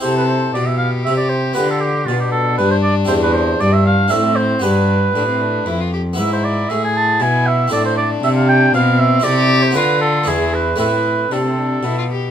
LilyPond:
<<
  \new Staff \with { instrumentName = "Oboe" } { \time 3/4 \key c \major \tempo 4 = 117 c''16 b'16 c''8 d''16 e''16 f''8 e''16 d''16 c''8 | b'16 a'16 g'8 f'16 g'16 a'8 b'16 c''16 d''8 | c''16 b'16 c''8 d''16 e''16 f''8 e''8 c''8 | b'2~ b'8 r8 |
\key a \minor e''16 c''16 d''8 e''16 gis''16 a''8 gis''8 e''8 | d''16 c''16 d''8 e''16 f''16 g''8 f''8 e''8 | d''8. c''16 b'8 a'8 gis'8 b'8 | b'4 a'4. r8 | }
  \new Staff \with { instrumentName = "Violin" } { \time 3/4 \key c \major a'4 g'2~ | g'4 d'2~ | d'2 c'4 | d'4 d'16 c'16 d'8 e'16 f'16 g'8 |
\key a \minor e'4 gis'4 e'4 | d'2 c'4 | g'4 f'4 e'4 | e'4 d'16 c'16 d'8 e'16 f'16 g'8 | }
  \new Staff \with { instrumentName = "Harpsichord" } { \time 3/4 \key c \major <c' e' g'>2. | <b f' g'>2. | <c' e' g'>2 <c' e' a'>4 | <b g' b'>2. |
\key a \minor <b e' b'>2. | <c' e' a'>2. | <c' e' a'>4 <b d' f'>4 <b d' e'>4 | <a c' e'>2. | }
  \new Staff \with { instrumentName = "Harpsichord" } { \clef bass \time 3/4 \key c \major c4 b,4 c4 | d4 b,4 g,4 | e,4 g,4 a,4 | g,4 a,4 f,4 |
\key a \minor gis,4 a,4 b,4 | a,4 c4 b,4 | c4 d4 e,4 | a,4 c4 b,4 | }
  \new Staff \with { instrumentName = "Cello" } { \clef bass \time 3/4 \key c \major c4 b,4 c4 | d4 b,4 g,4 | e,4 g,4 a,4 | g,4 a,4 f,4 |
\key a \minor gis,4 a,4 b,4 | a,4 c4 b,4 | c4 d4 e,4 | a,4 c4 b,4 | }
>>